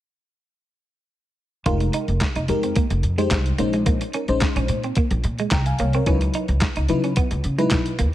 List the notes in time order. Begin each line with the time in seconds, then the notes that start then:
1.66 F1 G#3 D#4 F4 G4 A#4, kick, closed hi-hat
1.80 muted clean electric guitar stroke, closed hi-hat
1.93 D#4, closed hi-hat
2.08 F1, closed hi-hat
2.21 kick, snare, clap, closed hi-hat
2.35 F1 D#4, closed hi-hat
2.48 F2 G#3 D#4 G4 A#4, muted clean electric guitar stroke, closed hi-hat
2.63 C4, closed hi-hat
2.76 A#3, kick, closed hi-hat
2.90 F1, muted clean electric guitar stroke, closed hi-hat
3.03 F2, closed hi-hat
3.18 G#3 D#4 G4 C5, closed hi-hat
3.31 C2, muted clean electric guitar stroke, kick, snare, clap, closed hi-hat
3.46 closed hi-hat
3.58 A#1 G#3 A#3 C#4 D#4 C5, closed hi-hat
3.73 G#3, closed hi-hat
3.86 A#3, kick, closed hi-hat
4.01 muted clean electric guitar stroke, closed hi-hat
4.13 C#4 D#4 A#4, closed hi-hat
4.28 A#1 G#3 C#4 D#4 C5, closed hi-hat
4.41 kick, snare, clap, closed hi-hat
4.56 A#1 C#4, closed hi-hat
4.68 A#2, muted clean electric guitar stroke, closed hi-hat
4.83 C4, closed hi-hat
4.95 A#3, kick, closed hi-hat
5.11 A#1, closed hi-hat
5.24 A#2, muted clean electric guitar stroke, closed hi-hat
5.39 G#3, closed hi-hat
5.51 C2 G5 A#5, muted clean electric guitar stroke, kick, snare, clap, closed hi-hat
5.66 F5 G#5, closed hi-hat
5.79 C2 A#3 C#5 F5, closed hi-hat
5.93 C4 A#4 C#5, closed hi-hat
6.06 C#2 F#3 C#4 D#4 E4 B4, kick, closed hi-hat
6.21 muted clean electric guitar stroke, closed hi-hat
6.34 D#4, closed hi-hat
6.48 C#2, closed hi-hat
6.61 kick, snare, clap, closed hi-hat
6.76 C#2 D#4, closed hi-hat
6.89 C#3 F#3 D#4 E4 B4, muted clean electric guitar stroke, closed hi-hat
7.04 C#4, closed hi-hat
7.16 B3, kick, closed hi-hat
7.31 C#2, muted clean electric guitar stroke, closed hi-hat
7.44 C#3, closed hi-hat
7.58 F#3 G#3 D#4 E4 B4, closed hi-hat
7.71 B2, muted clean electric guitar stroke, kick, snare, clap, closed hi-hat
7.86 closed hi-hat
7.99 D#2 A#3, closed hi-hat